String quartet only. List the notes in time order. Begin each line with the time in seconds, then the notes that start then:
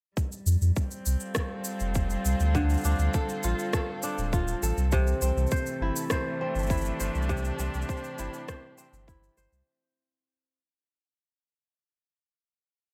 0.16 G3
0.84 C4
1.22 F4 A4
4.91 E3
5.43 A3
6.23 D4
6.53 G4